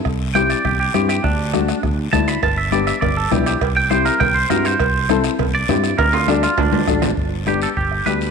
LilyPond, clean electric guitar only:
\new Staff \with { instrumentName = "Clean electric guitar" } { \time 4/4 \key g \major \tempo 4 = 202 r4 g''8 d''8 g'8 g'8 g'8 g'8 | d'2 r4 a''8 b''8 | a''8 e''8 d''8 e''8 d''8 a'8 g'8 g'8 | r8 g''8 c''8 bes'8 g''8 c''8 bes'8 c''8~ |
c''4. r4 d''4. | bes'8 f'8 d'8 f'8 d'2 | r4 g'8 a'8 g'4 b'4 | }